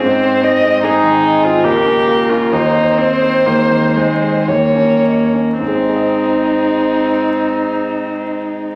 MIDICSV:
0, 0, Header, 1, 5, 480
1, 0, Start_track
1, 0, Key_signature, -4, "major"
1, 0, Tempo, 801068
1, 22, Time_signature, 3, 2, 24, 8
1, 982, Tempo, 882353
1, 1462, Tempo, 934579
1, 1942, Tempo, 1025641
1, 2422, Tempo, 1123596
1, 2902, Tempo, 1065719
1, 4320, End_track
2, 0, Start_track
2, 0, Title_t, "Violin"
2, 0, Program_c, 0, 40
2, 31, Note_on_c, 0, 72, 56
2, 264, Note_on_c, 0, 75, 66
2, 273, Note_off_c, 0, 72, 0
2, 506, Note_on_c, 0, 68, 54
2, 515, Note_off_c, 0, 75, 0
2, 989, Note_off_c, 0, 68, 0
2, 992, Note_on_c, 0, 70, 54
2, 1466, Note_on_c, 0, 72, 54
2, 1473, Note_off_c, 0, 70, 0
2, 2422, Note_on_c, 0, 73, 45
2, 2428, Note_off_c, 0, 72, 0
2, 2787, Note_off_c, 0, 73, 0
2, 2905, Note_on_c, 0, 63, 46
2, 4320, Note_off_c, 0, 63, 0
2, 4320, End_track
3, 0, Start_track
3, 0, Title_t, "Grand piano"
3, 0, Program_c, 1, 0
3, 0, Control_c, 1, 64, 127
3, 31, Control_c, 1, 64, 0
3, 32, Note_on_c, 1, 44, 54
3, 141, Control_c, 1, 64, 127
3, 145, Note_on_c, 1, 60, 42
3, 260, Note_on_c, 1, 63, 42
3, 329, Note_off_c, 1, 60, 0
3, 380, Note_on_c, 1, 60, 43
3, 446, Note_off_c, 1, 63, 0
3, 490, Note_off_c, 1, 44, 0
3, 499, Note_on_c, 1, 44, 49
3, 567, Note_off_c, 1, 60, 0
3, 613, Note_on_c, 1, 51, 45
3, 737, Note_on_c, 1, 63, 47
3, 808, Note_off_c, 1, 51, 0
3, 865, Note_on_c, 1, 60, 44
3, 934, Note_off_c, 1, 63, 0
3, 971, Note_off_c, 1, 44, 0
3, 984, Note_on_c, 1, 37, 53
3, 986, Note_off_c, 1, 60, 0
3, 992, Control_c, 1, 64, 0
3, 1082, Control_c, 1, 64, 127
3, 1100, Note_on_c, 1, 61, 41
3, 1218, Note_on_c, 1, 65, 41
3, 1291, Note_off_c, 1, 61, 0
3, 1341, Note_on_c, 1, 61, 43
3, 1413, Note_off_c, 1, 65, 0
3, 1448, Note_off_c, 1, 37, 0
3, 1463, Note_off_c, 1, 61, 0
3, 1464, Note_on_c, 1, 39, 51
3, 1473, Control_c, 1, 64, 0
3, 1549, Control_c, 1, 64, 127
3, 1582, Note_on_c, 1, 60, 40
3, 1705, Note_on_c, 1, 63, 40
3, 1771, Note_off_c, 1, 60, 0
3, 1821, Note_on_c, 1, 60, 41
3, 1896, Note_off_c, 1, 63, 0
3, 1941, Note_off_c, 1, 39, 0
3, 1948, Note_on_c, 1, 39, 42
3, 2013, Note_off_c, 1, 60, 0
3, 2061, Note_on_c, 1, 51, 38
3, 2179, Note_on_c, 1, 63, 36
3, 2251, Note_off_c, 1, 51, 0
3, 2300, Note_on_c, 1, 60, 35
3, 2373, Note_off_c, 1, 63, 0
3, 2411, Note_off_c, 1, 39, 0
3, 2422, Note_on_c, 1, 39, 41
3, 2423, Note_off_c, 1, 60, 0
3, 2433, Control_c, 1, 64, 0
3, 2538, Note_on_c, 1, 61, 29
3, 2543, Control_c, 1, 64, 127
3, 2659, Note_on_c, 1, 63, 30
3, 2737, Note_off_c, 1, 61, 0
3, 2784, Note_on_c, 1, 61, 30
3, 2854, Note_off_c, 1, 63, 0
3, 2887, Note_off_c, 1, 39, 0
3, 2901, Note_off_c, 1, 61, 0
3, 2902, Note_on_c, 1, 44, 35
3, 2913, Control_c, 1, 64, 0
3, 2934, Note_on_c, 1, 56, 36
3, 2966, Note_on_c, 1, 60, 37
3, 2998, Note_on_c, 1, 63, 36
3, 3013, Control_c, 1, 64, 127
3, 3030, Note_on_c, 1, 68, 34
3, 3060, Note_on_c, 1, 75, 34
3, 4320, Note_off_c, 1, 44, 0
3, 4320, Note_off_c, 1, 56, 0
3, 4320, Note_off_c, 1, 60, 0
3, 4320, Note_off_c, 1, 63, 0
3, 4320, Note_off_c, 1, 68, 0
3, 4320, Note_off_c, 1, 75, 0
3, 4320, End_track
4, 0, Start_track
4, 0, Title_t, "Viola"
4, 0, Program_c, 2, 41
4, 0, Note_on_c, 2, 60, 74
4, 492, Note_off_c, 2, 60, 0
4, 498, Note_on_c, 2, 63, 77
4, 863, Note_on_c, 2, 65, 68
4, 872, Note_off_c, 2, 63, 0
4, 983, Note_on_c, 2, 67, 76
4, 991, Note_off_c, 2, 65, 0
4, 1339, Note_on_c, 2, 65, 66
4, 1348, Note_off_c, 2, 67, 0
4, 1466, Note_on_c, 2, 63, 68
4, 1473, Note_off_c, 2, 65, 0
4, 1698, Note_on_c, 2, 60, 71
4, 1706, Note_off_c, 2, 63, 0
4, 1944, Note_on_c, 2, 58, 64
4, 1951, Note_off_c, 2, 60, 0
4, 2181, Note_on_c, 2, 56, 60
4, 2188, Note_off_c, 2, 58, 0
4, 2424, Note_on_c, 2, 58, 55
4, 2430, Note_off_c, 2, 56, 0
4, 2901, Note_off_c, 2, 58, 0
4, 2903, Note_on_c, 2, 60, 54
4, 4320, Note_off_c, 2, 60, 0
4, 4320, End_track
5, 0, Start_track
5, 0, Title_t, "Cello"
5, 0, Program_c, 3, 42
5, 22, Note_on_c, 3, 60, 61
5, 256, Note_on_c, 3, 56, 55
5, 265, Note_off_c, 3, 60, 0
5, 475, Note_off_c, 3, 56, 0
5, 479, Note_on_c, 3, 60, 64
5, 977, Note_on_c, 3, 58, 66
5, 986, Note_off_c, 3, 60, 0
5, 1938, Note_on_c, 3, 56, 53
5, 1945, Note_off_c, 3, 58, 0
5, 2423, Note_on_c, 3, 55, 43
5, 2429, Note_off_c, 3, 56, 0
5, 2663, Note_off_c, 3, 55, 0
5, 2906, Note_on_c, 3, 56, 42
5, 4320, Note_off_c, 3, 56, 0
5, 4320, End_track
0, 0, End_of_file